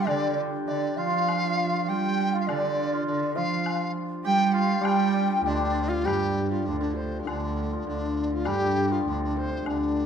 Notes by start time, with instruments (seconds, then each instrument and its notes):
Already playing: hammered dulcimer F3 G3 F4 G4
0.06 cello D3, hammered dulcimer D4, dizi D5, xiao D5, high woodblock
0.66 cello D3, hammered dulcimer D4, xiao D5, dizi D5, low woodblock
0.97 cello F3, hammered dulcimer F4, xiao F5, dizi F5
1.06 hammered dulcimer F4
1.12 hammered dulcimer F4
1.20 hammered dulcimer F4
1.28 hammered dulcimer F4, high woodblock
1.36 hammered dulcimer F4
1.43 hammered dulcimer F4
1.49 hammered dulcimer F4
1.56 hammered dulcimer F4
1.64 hammered dulcimer F4
1.72 hammered dulcimer F4
1.88 cello G3, hammered dulcimer G4, xiao G5, dizi G5
2.34 hammered dulcimer F4, xiao F5
2.41 dizi F5
2.48 cello D3, hammered dulcimer D4, dizi D5, xiao D5, high woodblock
2.93 hammered dulcimer F4
3.07 cello D3, hammered dulcimer D4, dizi D5, xiao D5
3.35 hammered dulcimer F3 F4, cello F3, xiao F5, dizi F5
3.66 high woodblock
4.24 cello G3, hammered dulcimer G4, xiao G5, dizi G5
4.46 dizi G5
4.53 hammered dulcimer F4, dizi F5
4.81 hammered dulcimer G3 G4, cello G3, dizi G5
4.85 xiao G5, high woodblock
5.14 hammered dulcimer D4
5.38 hammered dulcimer F3
5.45 cello D2, hammered dulcimer D3 G4, dizi D4, low woodblock
5.89 dizi F4
6.04 cello G2, hammered dulcimer G3, dizi G4, high woodblock
6.51 hammered dulcimer F3, dizi F4
6.66 cello D2, hammered dulcimer D3, dizi D4
6.80 hammered dulcimer D3, dizi D4
6.95 dizi C5
7.20 hammered dulcimer F3, dizi F4
7.25 cello D2, hammered dulcimer D3, dizi D4, high woodblock
7.73 hammered dulcimer F3
7.86 cello D2, hammered dulcimer D3, dizi D4
8.33 dizi F4
8.45 cello G2, hammered dulcimer G3, dizi G4, high woodblock
8.92 hammered dulcimer F3, dizi F4
9.06 cello D2, hammered dulcimer D3, dizi D4
9.24 dizi D4
9.31 hammered dulcimer D3
9.37 hammered dulcimer C3, dizi C5
9.66 cello D2, hammered dulcimer D3, dizi D4, high woodblock